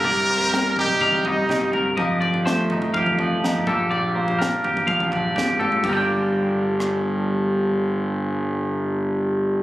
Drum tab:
CC |----------------|----------------|----------------|x---------------|
SD |----o-------o---|----o-------o---|----o-------o---|--------r-------|
T1 |----------------|----------------|--------------o-|----------------|
T2 |------oo-oo-----|------oo-oo-----|------oo-oo-----|----------------|
FT |o--o--ooooo--oo-|o-oo--oooo---oo-|o--o--ooooo--o-o|----------------|
BD |o-------o-o-o---|o-------o-o---o-|--------o-o-o---|o---------------|

CC |----------------|
SD |----------------|
T1 |----------------|
T2 |----------------|
FT |----------------|
BD |----------------|